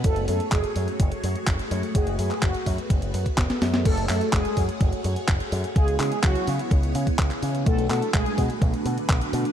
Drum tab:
CC |----------------|----------------|x---------------|----------------|
HH |xxoxxxoxxxoxxxox|xxoxxxoxxxoxxxox|xxoxxxoxxxoxxxox|xxoxxxoxxxoxxxox|
CP |----x-------x---|---xx-------x---|--x-x-------x---|--x-x-------xx--|
SD |----------------|------------oooo|----------------|----------------|
BD |o---o---o---o---|o---o-o-o--oo---|o---o-o-o---o---|o---o---o--oo---|

CC |----------------|
HH |xxoxxxoxxxoxxxox|
CP |--x-x-------x---|
SD |----------------|
BD |o---o-o-o---o---|